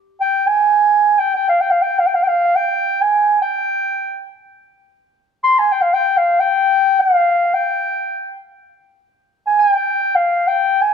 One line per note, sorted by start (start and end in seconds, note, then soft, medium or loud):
0.21 0.48 G5 medium
0.47 1.20 G#5 medium
1.19 1.35 G5 medium
1.35 1.48 G5 medium
1.49 1.62 F5 medium
1.61 1.72 G5 medium
1.71 1.83 F5 medium
1.82 2.01 G5 medium
1.99 2.08 F5 medium
2.06 2.16 G5 medium
2.15 2.25 F5 medium
2.23 2.29 G5 medium
2.28 2.57 F5 medium
2.56 3.03 G5 medium
3.02 3.41 G#5 medium
3.42 4.39 G5 medium
5.44 5.60 C6 medium
5.59 5.73 G#5 medium
5.72 5.83 G5 medium
5.82 5.95 F5 medium
5.94 6.19 G5 medium
6.17 6.41 F5 medium
6.40 7.02 G5 medium
7.01 7.55 F5 medium
7.54 8.35 G5 medium
9.47 9.60 G#5 medium
9.60 9.72 G#5 medium
9.72 10.17 G5 medium
10.15 10.49 F5 medium
10.47 10.83 G5 medium
10.81 10.94 G#5 medium